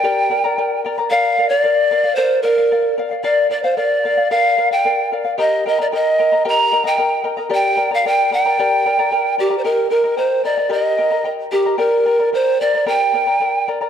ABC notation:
X:1
M:2/4
L:1/16
Q:1/4=112
K:Bb
V:1 name="Charango"
[GBdgb]2 [Bdgb] [Bdb] [Bdgb]2 [Bdgb] [Bdb] | [Bdf]2 [Bdf] [df] [Bdf]2 [Bdf] [df] | [Bdf]2 [Bdf] [df] [Bdf]2 [Bdf] [df] | [Bdf]2 [Bdf] [df] [Bdf]2 [Bdf] [df] |
[Bdf]2 [Bdf] [df] [Bdf]2 [Bdf] [df] | [GBegb]2 [Begb] [Beb] [Begb]2 [Begb] [Beb] | [GBegb]2 [Begb] [Beb] [Begb]2 [Begb] [Beb] | [GBdgb]2 [Bdgb] [Bdb] [Bdgb]2 [Bdgb] [Bdb] |
[GBdgb]2 [Bdgb] [Bdb] [Bdgb]2 [Bdgb] [Bdb] | [GBegb]2 [Begb] [Beb] [Begb]2 [Begb] [Beb] | [GBegb]2 [Begb] [Beb] [Begb]2 [Begb] [Beb] | [GBdgb]2 [Bdgb] [Bdb] [Bdgb]2 [Bdgb] [Bdb] |
[GBdgb]2 [Bdgb] [Bdb] [Bdgb]2 [Bdgb] [Bdb] |]
V:2 name="Pan flute"
g6 z2 | f3 d4- d | c2 B4 z2 | d2 d c d4 |
f3 g3 z2 | e2 e d e4 | b3 g3 z2 | g3 f g2 g2- |
g6 G3/2 c/2 | B2 B2 c2 d2 | e6 G2 | B4 c2 d2 |
g6 z2 |]